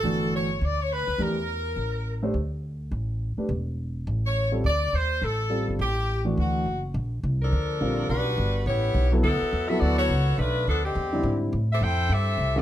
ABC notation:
X:1
M:4/4
L:1/16
Q:"Swing" 1/4=209
K:Gdor
V:1 name="Saxophone section"
A4 ^c3- c/2 c/2 d2 c2 =B4 | B12- B2 z2 | z16 | z8 z2 ^c4 z2 |
d4 c4 A6 z2 | G6 z2 ^F6 z2 | z6 [F,DAB]8- [F,DAB]2 | [G,D^F=B]8 [=B,EG^c]6 z2 |
[^F,=B,EA]6 [B,^FAe]2 [B,FAd]2 [B,FA^c]6 | [A,DF=B]4 [F,=B,DA]2 [D,^G,C=G]8 z2 | z2 [CGAe]2 [EAcg]4 [CGAe]6 z2 |]
V:2 name="Grand piano"
[E,A,D^F]6 z8 z2 | [E,A,DG]2 z12 [A,DGc]2 | z12 z2 [A,DG=B]2 | z12 z2 [G,CFA]2 |
z12 [G,CFA]4 | z6 [E,A,D^F]6 z4 | z12 [D,G,CF]4 | z12 z2 [^F,=B,EA]2 |
z6 [^F,=B,EA]6 z4 | z8 z2 [D,G,^B,E]6 | z12 z2 [_E,^G,^CF]2 |]
V:3 name="Upright bass" clef=bass
G,,,8 D,,6 D,,2 | E,,8 A,,,8 | D,,8 A,,,6 z2 | E,,,8 A,,,8 |
D,,4 _E,,4 A,,,6 G,,,2 | A,,,8 D,,4 ^F,,,4 | B,,,4 C,,4 D,,4 B,,,4 | =B,,,4 G,,,4 A,,,4 B,,,4 |
D,,2 z2 E,,4 D,,4 ^C,,4 | =B,,,4 D,,4 E,,4 ^G,,4 | A,,4 F,,4 G,,4 C,,4 |]